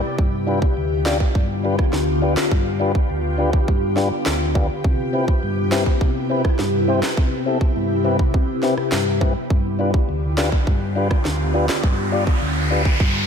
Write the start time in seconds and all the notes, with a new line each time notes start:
Already playing: C3 B3 E4 G4 D5
0.18 G2 D3 F4, kick
0.47 D4 F4 G4 B4
0.62 kick
0.77 D2
1.05 D4 F4 G4 D5, snare, clap
1.20 kick
1.35 G2, kick
1.63 D4 F4 G4 B4
1.79 kick, cross-stick
1.93 D2, snare
2.22 D4 F4 G4 B4
2.37 snare, clap
2.51 G2, kick
2.80 D4 F4 G4 B4
2.95 kick
3.10 D2
3.38 D4 F4 G4 B4
3.53 kick
3.68 G2, kick
3.96 D4 F4 G4 B4, snare
4.26 D2, snare, clap
4.54 D4 F4 G4 B4, kick
4.84 C3 E4, kick
5.13 C4 E4 G4 B4
5.28 kick
5.43 G2
5.71 C4 E4 G4 B4, snare, clap
5.86 kick
6.01 C3, kick
6.29 C4 E4 G4 B4
6.45 kick, cross-stick
6.59 G2, snare
6.88 C4 E4 G4 C5
7.03 snare, clap
7.17 C3, kick
7.46 C4 E4 G4 A4
7.61 kick
7.76 G2
8.04 C4 E4 G4 B4
8.19 kick
8.34 C3, kick
8.62 C4 E4 G4 B4, snare
8.78 cross-stick
8.92 G2, snare, clap
9.21 C4 E4 G4 B4, kick
9.50 G2 D3 B3 F4 G4, kick, riser
9.79 D4 F4 G4 B4
9.94 kick
10.09 D2
10.37 D4 F4 G4 B4, snare, clap
10.52 kick
10.67 G2, kick
10.96 D4 F4 G4 B4
11.11 kick, cross-stick
11.25 D2, snare
11.54 D4 F4 G4 B4
11.69 snare, clap
11.84 G2 A4, kick
12.12 D4 F4 G4 D5
12.27 kick
12.42 D2
12.70 D4 F4 G4 B4
12.85 kick
13.00 G2, kick